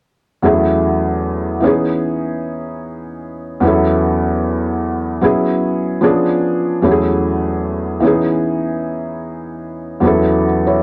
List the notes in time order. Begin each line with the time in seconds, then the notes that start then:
0.42 E2 F#3 A3 C#4 E4 G#4
1.60 E3 B3 C#4
1.65 D#4 G#4
3.61 E2 F#3 B3 C#4
3.66 E4 A4
5.21 F#3 B3 C#4 E4 G#4
6.01 F3 B3 C#4 D4 G#4
6.82 E2 F#3 A3 C#4 E4 G4
6.91 G#4
8.00 E3 B3 C#4
8.05 D#4 G#4
10.00 E2 F#3 B3 C#4
10.05 E4 A4
10.67 E4 C#5